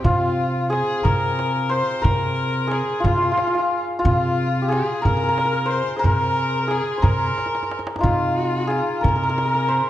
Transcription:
Already playing: C4 G4
0.03 C3 F4, tombak dum
0.70 G#4, tombak tek
1.03 C3 A#4, tombak dum
1.39 tombak tek
1.69 C5, tombak ka
1.89 tombak ka
2.02 C3 A#4, tombak dum
2.67 G#4
2.71 G#4, tombak tek
3.00 F4
3.04 C3 F4, tombak dum
3.17 F4
3.23 F4
3.32 F4
3.38 F4, tombak tek
3.47 F4
3.55 F4
3.59 F4
3.71 tombak ka
3.88 tombak ka
3.99 F4
4.05 C3 F4, tombak dum
4.62 G4
4.68 G#4, tombak tek
5.02 C3 A#4, tombak dum
5.09 A#4
5.17 A#4
5.24 A#4
5.29 A#4
5.38 A#4, tombak tek
5.45 A#4
5.53 A#4
5.66 C5
5.70 C5, tombak ka
5.88 tombak ka
5.96 G#4 A#4 C5
6.04 C3 A#4, tombak dum
6.68 G#4, tombak tek
6.98 C5
7.02 C3 A#4, tombak dum
7.38 tombak tek
7.46 tombak ka
7.55 tombak tek
7.63 tombak ka
7.71 tombak tek
7.79 tombak ka
7.87 tombak tek
7.96 D#4, tombak ka
8.01 C3 F4, tombak dum
8.67 G#4, tombak tek
9.01 C3 A#4, tombak dum
9.08 A#4
9.16 A#4
9.23 A#4
9.29 A#4
9.38 A#4, tombak tek
9.45 A#4
9.54 A#4
9.68 C5, tombak ka

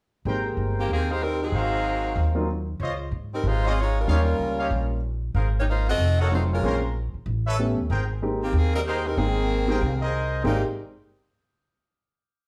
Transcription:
0.25 G#1 G#3 A#3 C4 D#4 G4 A#4 C5 G5
0.57 G1
0.78 D#3 A#3 C4 G4
0.88 D#2 D#3 A#3 C4 G#4
1.11 A#3 D#4 G4 C5
1.22 G3 C4 D#4 A#4
1.42 F#3 C4 D#4 G#4
1.52 G#1 F#4 A#4 C5 F5
2.16 D#2
2.35 F#3 A#3 C4 D#4 F4
2.80 C#2 F4 C5 C#5 D#5
3.11 G#2
3.33 G3 C4 D#4 A#4
3.44 G#1 G#3 D#4 C5
3.48 F4
3.63 F4 C5 C#5 D#5
3.68 C4 F4 G#4 D#5
3.80 G#3 D#4 F4 C#5
3.99 G3 C#4 F4 A#4
4.07 D#2 G3 A#3 C#4 D#4 F4 G4 C#5 D#5 F5
4.39 C#2
4.58 G4 C#5 D#5 F5
4.71 A#1
5.34 G#1 G#4 A#4 C5 F5
5.59 A#3 D#4 G4 C#5
5.69 A#3 D#4 F4 C5
5.89 C4 F#4 A4 D#5
5.98 F1
6.18 A#3 D#4 F#4 A4 C#5 D#5 F#5
6.31 F#3 A3 C4 D#4 F4 F#4 C5
6.53 G#3 C#4 F4 A#4
6.62 A#1 G#3 A#3 C4 C#4 F4 A#4 C5 C#5 G#5
7.14 muted upright bass stroke
7.26 A1
7.45 A4 B4 C#5 E5
7.59 A3 B3 C#4 E4 G4
7.77 D#2
7.89 G#1 G#4 A#4 C5 G5
8.22 G#3 A#3 C4 D#4 G4
8.42 D#3 A#3 C4 G4
8.53 D#2 D#3 A#3
8.57 C4 G#4
8.74 G3 C4 D#4 A#4
8.85 A#3 D#4 G4 G#4 A#4 C5 G5
9.06 G3 C4 D#4 A#4
9.17 G#1 D#3 G#3 A#3 C4 D#4 G#4 G5
9.68 G#3 A#3 C4 D#4 G4 G#4 A#4 C5 G5
9.81 C2
10.00 G#4 A#4 C5 D#5
10.44 G#1 C3 G3 G#3 A#3 C4 D#4 G4 G#4 A#4 C5 G5

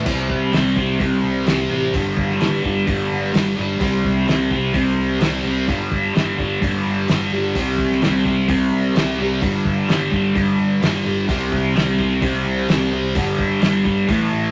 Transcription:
0.05 C2 C3 G3 C4, kick, crash
0.29 C2, kick
0.53 C2 C3 G3 C4, snare, open hi-hat
0.76 C2 G3 C4, kick
0.99 C2 C3 G3 C4, kick, open hi-hat
1.23 C2
1.46 C2 C3 G3 C4, snare, open hi-hat
1.70 A1 G3 C4
1.94 G1 G2 D3 G3, kick, open hi-hat
2.17 G1, kick
2.31 snare
2.40 G1 G2 D3 G3, snare, open hi-hat
2.64 G1 D3 G3, kick
2.86 G1 G2 D3 G3, kick, open hi-hat
3.11 G1
3.33 G1 G2 D3 G3, snare, open hi-hat
3.56 G1 D3 G3
3.80 C2 C3 G3 C4, kick, open hi-hat
4.04 C2, kick
4.27 C2 C3 G3 C4, snare, open hi-hat
4.51 C2 G3 C4, kick
4.74 C2 C3 G3 C4, kick, open hi-hat
4.98 C2
5.20 C2 C3 G3 C4, snare, open hi-hat
5.44 C2 G3 C4
5.68 G1 G2 D3 G3, kick, open hi-hat
5.91 G1, kick
6.15 G1 G2 D3 G3, snare, open hi-hat
6.38 G1 D3 G3, kick
6.62 G1 G2 D3 G3, kick, open hi-hat
6.85 G1
7.08 G1 G2 D3 G3, snare, open hi-hat
7.32 G1 D3 G3
7.55 C2 C3 G3 C4, kick, open hi-hat
7.78 C2, kick
7.92 snare
8.02 C2 C3 G3 C4, snare, open hi-hat
8.24 C2 G3 C4, kick
8.48 C2 C3 G3 C4, kick, open hi-hat
8.72 C2
8.95 C2 C3 G3 C4, snare, open hi-hat
9.18 C2 G3 C4
9.42 G1 G2 D3 G3, kick, open hi-hat
9.65 G1, kick
9.88 G1 G2 D3 G3, snare, open hi-hat
10.11 G1 D3 G3, kick
10.35 G1 G2 D3 G3, kick, open hi-hat
10.59 G1
10.82 G1 G2 D3 G3, snare, open hi-hat
11.05 G1 D3 G3
11.28 C2 C3 G3 C4, kick, open hi-hat
11.52 C2, kick
11.75 C2 C3 G3 C4, snare, open hi-hat
11.98 C2 G3 C4, kick
12.21 C2 C3 G3 C4, kick, open hi-hat
12.45 C2
12.69 C2 C3 G3 C4, snare, open hi-hat
12.92 C2 G3 C4
13.15 G1 G2 D3 G3, kick, open hi-hat
13.39 G1, kick
13.61 G1 G2 D3 G3, snare, open hi-hat
13.84 G1 D3 G3, kick
14.08 A1 A2 E3 A3, kick, open hi-hat
14.32 A1

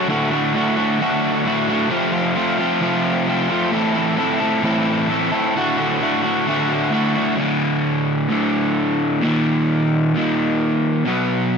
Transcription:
0.07 D2 A2 D3 A3 F#4
0.31 D3 A3 F#4
0.54 A2 D3 A3 F#4
0.76 D3 A3 F#4
0.99 D2 A2 D3 A3 F#4
1.45 A2 D3 A3 F#4
1.68 D3 A3 F#4
1.89 F2 C3 F3 A3 C4 F4
2.12 F3 A3 C4 F4
2.35 F3 A3 C4 F4
2.59 F3 A3 C4 F4
2.81 F2 C3 F3 A3 C4 F4
3.27 F3 A3 C4 F4
3.48 F3 A3 C4 F4
3.72 A2 E3 A3 C4 E4 A4
3.94 A3 C4 E4 A4
4.16 A3 C4 E4 A4
4.40 A3 C4 E4 A4
4.62 A2 E3 A3 C4 E4 A4
5.09 A3 C4 E4 A4
5.32 A3 C4 E4 A4
5.55 D2 A2 D3 A3 F#4
5.77 D3 A3 F#4
6.00 A2 D3 A3 F#4
6.22 D3 A3 F#4
6.46 D2 A2 D3 A3 F#4
6.91 A2 D3 A3 F#4
7.14 D3 A3 F#4
7.37 D2 A2 D3
8.29 D2 A2 D3
9.21 D#2 A#2 D#3
10.14 D#2 A#2 D#3
11.05 B2 F#3 B3

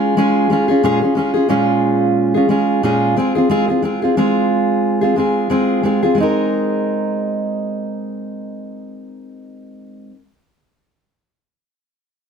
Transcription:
Already playing: G#3 C#4 F4 G#4
0.17 G#3 C#4 F4 G#4
0.50 G#3 C#4 F4 G#4
0.68 C#4 F4 G#4
0.83 A#2 G#3 C#4 F4 G#4
1.01 C#4 F4 G#4
1.15 G#3 C#4 F4 G#4
1.34 C#4 F4 G#4
1.49 A#2 G#3 C#4 F4 G#4
2.34 C#4 F4 G#4
2.49 G#3 C#4 F4 G#4
2.83 A#2 G#3 C#4 F4 G#4
3.17 G#3 C4 F4 G#4
3.35 C4 F4 G#4
3.50 G#3 C4 F4 G#4
3.68 C4 F4 G#4
3.82 G#3 C4 F4 G#4
4.02 C4 F4 G#4
4.17 G#3 C4 F4 G#4
5.01 C4 F4 G#4
5.16 G#3 C4 F4 G#4
5.50 G#3 C4 F4 G#4
5.83 G#3 C4 F4 G#4
6.03 C4 F4 G#4
6.15 G#3 C4
6.20 D#4 A#4

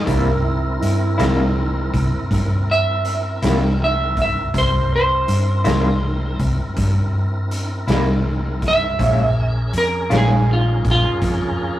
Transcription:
0.06 C2 C3 G3 A#3 C4 E4 A#4, kick, closed hi-hat
0.43 E4
0.77 D#4
0.81 G2 E4, closed hi-hat
1.18 C2 C3 G3 A#3 E4, snare, closed hi-hat
1.94 C2, kick, closed hi-hat
2.31 G2, kick, closed hi-hat
2.71 E5
3.05 closed hi-hat
3.42 C2 C3 G3 A#3 E4, snare, closed hi-hat
3.84 E5
4.17 kick, closed hi-hat
4.22 E5
4.54 C2 C4 E4 A#4, kick, closed hi-hat
4.58 C5
4.96 C5
5.28 G2, closed hi-hat
5.64 C2 C3 G3 A#3 E4, snare, closed hi-hat
6.39 C2, kick, closed hi-hat
6.76 G2, kick, closed hi-hat
7.51 closed hi-hat
7.87 C2 C3 G3 A#3 E4, snare, closed hi-hat
8.62 kick, snare, closed hi-hat
8.68 E5
8.99 A#1 A#2 G#3 C#4 F4 G#4 A#4, kick, closed hi-hat
9.73 F2, closed hi-hat
9.78 A#4
10.10 A#1 A#2 G#3 C#4 F4, snare, closed hi-hat
10.16 G#4
10.53 F4
10.85 A#1, kick, closed hi-hat
10.91 F4
11.22 F2, kick, closed hi-hat

